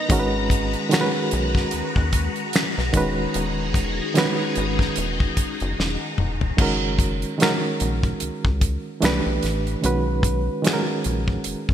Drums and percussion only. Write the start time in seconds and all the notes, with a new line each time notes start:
0.10 kick, closed hi-hat
0.50 kick, closed hi-hat
0.73 closed hi-hat
0.91 finger snap, snare, closed hi-hat
1.31 closed hi-hat
1.55 kick, snare
1.71 closed hi-hat
1.96 kick
2.13 kick, closed hi-hat
2.36 closed hi-hat
2.53 finger snap, snare, closed hi-hat
2.78 snare
2.93 kick, closed hi-hat
3.34 closed hi-hat
3.74 kick, closed hi-hat
4.15 finger snap, snare, closed hi-hat
4.55 closed hi-hat
4.79 kick, snare
4.96 closed hi-hat
5.20 kick
5.37 kick, closed hi-hat
5.60 closed hi-hat
5.80 snare
6.18 mid tom
6.41 floor tom
6.58 kick, crash
6.99 kick, closed hi-hat
7.22 closed hi-hat
7.40 finger snap, snare, closed hi-hat
7.80 closed hi-hat
8.03 kick, closed hi-hat
8.20 closed hi-hat
8.45 kick
8.61 kick, closed hi-hat
9.02 finger snap, snare, closed hi-hat
9.43 snare, closed hi-hat
9.67 closed hi-hat
9.84 closed hi-hat
10.23 kick, closed hi-hat
10.64 finger snap, snare, closed hi-hat
11.04 closed hi-hat
11.28 kick
11.44 closed hi-hat
11.69 kick